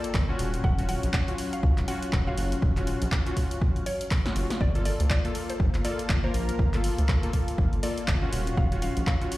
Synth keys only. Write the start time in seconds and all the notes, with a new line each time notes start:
Already playing: A#3 F4 A4
0.29 C#4 F4 F#4
0.78 C#4 F4 F#4
1.28 C#4 F4 F#4
1.88 C#4 F4 F#4
2.27 C#4 F4 F#4
2.77 C#4 F4 F#4
3.26 C#4 F4 F#4
4.25 C#4 F4 F#4
4.75 A#3 F4 A4
5.24 A#3 F4 A4
5.84 A#3 F4 A4
6.24 A#3 F4 A#4
6.73 A#3 F4 A4
7.23 A#3 F4 A4
7.83 A#3 F4 A4
8.22 C#4 F4 F#4
8.72 C#4 F4 F#4
9.21 C#4 F4 F#4